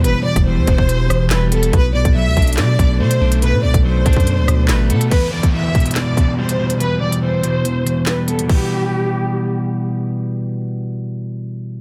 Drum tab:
CC |------------------------------------------------------------------------------------------------|------------------------------------------------------------------------------------------------|------------------------------------------------------------------------------------------------|x-----------------------------------------------------------------------------------------------|
HH |x-----------------x-----------------x-----------x-----------x-----------x-----------x-----x-----|x-----------------x-----------------x--x--x--x--x-----------x-----------------x-----------x-----|x-----------------x-----------------x---x---x---x-----------x-----------x-----------x-----x-----|x-----------------x-----------------x--x--x--x--------------x-----------------x-----------x-----|
CP |------------------------------------------------------------------------x-----------------------|------------------------------------------------x-----------------------------------------------|------------------------------------------------------------------------x-----------------------|------------------------------------------------x-----------------------------------------------|
SD |------------------r-----------------------------------------r-----------o-----------------------|------------------------------------------------o-----------------------------------------------|------------------------------------------------------------r-----------o-----------------------|------------------------------------------------o-----------------------------------------------|
BD |------------------o-----------------o-----o-----------------------------------------------------|o-----------------o-----------------o-----------------------o-----------------------------------|------------------o-----------------o-----o-----------------------------------------------------|o-----------------o-----------------o-----------------------o-----------------------------------|

CC |------------------------------------------------------------------------------------------------|x-----------------------------------------------------------------------------------------------|------------------------------------------------------------------------------------------------|
HH |x-----------------x-----------------x-----------x-----------x-----------x-----------x-----x-----|------------------------------------------------------------------------------------------------|------------------------------------------------------------------------------------------------|
CP |------------------------------------------------------------------------x-----------------------|------------------------------------------------------------------------------------------------|------------------------------------------------------------------------------------------------|
SD |------------------------------------------------------------------------o-----------------------|------------------------------------------------------------------------------------------------|------------------------------------------------------------------------------------------------|
BD |------------------------------------------------------------------------------------------------|o-----------------------------------------------------------------------------------------------|------------------------------------------------------------------------------------------------|